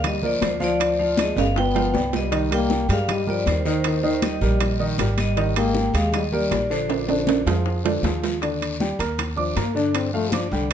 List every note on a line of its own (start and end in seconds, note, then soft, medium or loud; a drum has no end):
0.00 0.37 D2 loud
0.00 0.16 A#3 medium
0.00 0.16 A#4 medium
0.00 0.16 D5 medium
0.04 0.22 G3 medium
0.04 0.25 D#5 loud
0.04 high bongo medium
0.04 high conga soft
0.04 low conga medium
0.04 high timbale medium
0.04 long guiro medium
0.23 0.41 F3 medium
0.23 0.54 A#3 medium
0.23 0.54 A#4 medium
0.23 0.54 D5 medium
0.23 0.44 D5 medium
0.23 high conga soft
0.23 low conga medium
0.41 1.31 D2 medium
0.41 0.60 F3 medium
0.41 high bongo soft
0.41 low bongo medium
0.41 high conga medium
0.41 high timbale medium
0.41 low timbale medium
0.41 short guiro medium
0.45 0.61 C5 medium
0.60 0.92 F3 medium
0.60 1.15 F3 medium
0.60 0.92 F4 medium
0.60 0.92 F5 medium
0.60 high bongo soft
0.60 high conga medium
0.60 short guiro medium
0.64 1.21 D5 loud
0.80 high bongo medium
0.80 high conga soft
0.80 high timbale loud
0.80 long guiro medium
0.99 1.30 F3 medium
0.99 1.30 F4 medium
0.99 1.30 F5 medium
0.99 high bongo soft
0.99 high conga soft
1.17 1.37 G#3 medium
1.17 1.39 D#5 loud
1.17 high bongo medium
1.17 high conga loud
1.17 high timbale medium
1.17 short guiro medium
1.36 1.90 G1 medium
1.36 1.48 G#3 medium
1.36 1.68 B3 medium
1.36 1.68 B4 medium
1.36 1.68 D5 medium
1.36 1.47 F5 medium
1.36 high bongo soft
1.36 high conga soft
1.36 high timbale medium
1.36 short guiro medium
1.56 2.10 B3 loud
1.56 2.10 G5 loud
1.56 high bongo medium
1.56 high conga soft
1.56 low timbale medium
1.56 long guiro medium
1.75 1.90 F3 medium
1.75 1.91 F4 medium
1.75 1.91 F5 medium
1.75 high conga soft
1.75 low timbale loud
1.94 2.83 C2 medium
1.94 2.25 B3 medium
1.94 2.25 B4 medium
1.94 2.25 D5 medium
1.94 high bongo soft
1.94 low bongo medium
1.94 high conga medium
1.94 short guiro medium
2.13 2.50 G3 medium
2.13 2.50 D#5 loud
2.13 high bongo soft
2.13 high conga medium
2.13 low timbale medium
2.13 short guiro medium
2.31 2.47 D#3 medium
2.31 2.47 D#4 medium
2.31 2.48 D#5 medium
2.31 high bongo medium
2.31 high conga soft
2.31 high timbale medium
2.31 long guiro medium
2.50 2.82 G3 medium
2.50 2.88 A#3 medium
2.50 2.82 G4 medium
2.50 2.82 A#4 medium
2.50 2.92 G5 medium
2.50 high bongo soft
2.50 high conga soft
2.50 high timbale medium
2.70 high bongo medium
2.70 high conga medium
2.70 short guiro medium
2.89 3.42 G2 loud
2.89 3.20 G3 medium
2.89 2.99 G#3 medium
2.89 3.20 G4 medium
2.89 3.21 A#4 medium
2.89 3.00 F5 medium
2.89 high bongo soft
2.89 high timbale medium
2.89 short guiro medium
3.08 3.27 G3 medium
3.08 3.28 D#5 medium
3.08 high bongo medium
3.08 high conga soft
3.08 low conga medium
3.08 high timbale medium
3.08 long guiro medium
3.27 3.46 F3 medium
3.27 3.59 G3 medium
3.27 3.59 G4 medium
3.27 3.59 A#4 medium
3.27 3.48 D5 medium
3.27 high conga soft
3.27 low conga medium
3.46 4.36 D#2 medium
3.46 3.65 D#3 medium
3.46 3.66 C5 medium
3.46 high bongo soft
3.46 low bongo medium
3.46 high conga medium
3.46 high timbale medium
3.46 short guiro medium
3.65 3.97 D#3 medium
3.65 3.75 D#3 medium
3.65 3.97 D#4 medium
3.65 3.76 C5 medium
3.65 3.97 D#5 medium
3.65 high bongo soft
3.65 short guiro medium
3.84 4.03 D#3 medium
3.84 4.05 C5 medium
3.84 high bongo medium
3.84 high conga soft
3.84 high timbale medium
3.84 long guiro medium
4.03 4.35 D#3 medium
4.03 4.14 D#3 medium
4.03 4.35 D#4 medium
4.03 4.14 C5 medium
4.03 4.35 D#5 medium
4.03 high bongo soft
4.03 high conga soft
4.22 4.96 G3 medium
4.22 4.96 D#5 loud
4.22 high bongo medium
4.22 high conga loud
4.22 high timbale medium
4.22 short guiro medium
4.41 4.95 A#1 loud
4.41 4.73 G3 medium
4.41 4.73 G4 medium
4.41 4.73 A#4 medium
4.41 high bongo soft
4.41 high conga soft
4.41 short guiro medium
4.60 high bongo medium
4.60 high conga soft
4.60 high timbale medium
4.60 long guiro medium
4.79 4.95 D#3 medium
4.79 4.95 D#4 medium
4.79 4.96 D#5 medium
4.79 high conga soft
4.98 5.88 G#1 medium
4.98 5.30 G3 medium
4.98 5.30 G4 medium
4.98 5.30 A#4 medium
4.98 high bongo soft
4.98 low bongo medium
4.98 high conga medium
4.98 high timbale medium
4.98 short guiro medium
5.18 5.54 G3 medium
5.18 5.55 D#5 loud
5.18 high bongo soft
5.18 high conga medium
5.18 high timbale medium
5.18 short guiro medium
5.36 5.52 D#3 medium
5.36 5.53 D#4 medium
5.36 5.53 D#5 medium
5.36 high bongo medium
5.36 high conga soft
5.36 high timbale medium
5.36 long guiro medium
5.56 5.88 G#3 medium
5.56 5.92 A#3 loud
5.56 5.87 G4 medium
5.56 5.88 G#4 medium
5.56 5.92 G5 medium
5.56 high bongo soft
5.56 high conga soft
5.56 high timbale loud
5.75 high bongo medium
5.75 high conga loud
5.75 short guiro medium
5.94 6.47 D#2 loud
5.94 6.25 G#3 medium
5.94 6.13 G#3 medium
5.94 6.25 G4 medium
5.94 6.26 G#4 medium
5.94 6.14 F5 medium
5.94 high bongo soft
5.94 high timbale medium
5.94 short guiro medium
6.12 6.23 G3 medium
6.12 6.23 D#5 medium
6.12 high bongo medium
6.12 high conga soft
6.12 low conga medium
6.12 high timbale medium
6.12 long guiro medium
6.32 6.68 G3 medium
6.32 6.64 A#3 medium
6.32 6.64 G4 medium
6.32 6.64 A#4 medium
6.32 6.72 D5 medium
6.32 high conga soft
6.32 low conga medium
6.51 7.41 A#1 medium
6.51 high bongo soft
6.51 low bongo medium
6.51 high conga medium
6.51 high timbale medium
6.51 short guiro medium
6.70 7.02 D3 medium
6.70 8.01 F3 medium
6.70 7.02 D4 medium
6.70 8.00 C5 medium
6.70 7.02 D5 loud
6.70 high bongo soft
6.70 short guiro medium
6.89 high bongo medium
6.89 high conga soft
6.89 high timbale medium
6.89 long guiro medium
7.08 7.39 D3 medium
7.08 7.40 D4 medium
7.08 7.40 D5 medium
7.08 high bongo soft
7.08 high conga soft
7.08 high timbale medium
7.27 high bongo medium
7.27 high conga medium
7.27 high timbale medium
7.27 short guiro medium
7.46 8.00 F2 medium
7.46 7.78 F3 medium
7.46 7.78 F4 medium
7.46 7.78 G#4 medium
7.46 high bongo soft
7.46 high conga soft
7.46 low timbale loud
7.46 short guiro medium
7.65 high bongo medium
7.65 high conga soft
7.65 long guiro medium
7.84 8.00 D3 medium
7.84 8.00 D4 medium
7.84 8.00 D5 medium
7.84 high conga soft
7.84 low timbale medium
8.03 8.93 D#2 medium
8.03 8.35 F3 medium
8.03 8.35 F4 medium
8.03 8.35 G#4 medium
8.03 high bongo soft
8.03 low bongo medium
8.03 high conga medium
8.03 low timbale medium
8.03 short guiro medium
8.23 high bongo soft
8.23 low timbale medium
8.23 short guiro medium
8.41 8.73 D3 medium
8.41 8.73 D4 medium
8.41 8.74 D5 medium
8.41 high bongo medium
8.41 high conga soft
8.41 high timbale medium
8.41 long guiro medium
8.61 high bongo soft
8.61 high conga soft
8.61 high timbale medium
8.80 8.96 G3 medium
8.80 8.96 G4 medium
8.80 8.96 G5 medium
8.80 high bongo medium
8.80 high conga medium
8.80 short guiro medium
8.99 9.53 D#2 loud
8.99 9.31 A#3 medium
8.99 9.31 A#4 medium
8.99 9.31 A#5 medium
8.99 high bongo soft
8.99 high timbale medium
8.99 short guiro medium
9.18 high bongo medium
9.18 high conga soft
9.18 low conga medium
9.18 high timbale medium
9.18 long guiro medium
9.36 9.58 F3 medium
9.36 9.52 D4 medium
9.36 9.53 D5 medium
9.36 9.53 D6 medium
9.36 high conga soft
9.36 low conga medium
9.56 10.46 G2 medium
9.56 9.72 A#3 medium
9.56 9.75 A#3 medium
9.56 9.72 A#4 medium
9.56 9.72 A#5 medium
9.56 high bongo soft
9.56 low bongo medium
9.56 high conga medium
9.56 high timbale medium
9.56 short guiro medium
9.75 10.06 D3 medium
9.75 10.07 D4 medium
9.75 9.97 D4 loud
9.75 10.07 D5 medium
9.75 high bongo soft
9.75 short guiro medium
9.94 10.14 C4 medium
9.94 high bongo medium
9.94 high conga soft
9.94 high timbale medium
9.94 long guiro medium
10.13 10.29 F3 medium
10.13 10.35 A3 loud
10.13 10.29 F4 medium
10.13 10.30 F5 medium
10.13 high bongo soft
10.13 high conga soft
10.32 10.51 F3 medium
10.32 10.49 D4 medium
10.32 10.49 D5 medium
10.32 10.49 D6 medium
10.32 high bongo medium
10.32 high conga loud
10.32 high timbale medium
10.32 short guiro medium
10.52 10.73 C2 loud
10.52 10.70 D3 medium
10.52 10.73 G3 medium
10.52 10.73 G4 medium
10.52 10.73 G5 medium
10.52 high bongo soft
10.52 high conga soft
10.52 short guiro medium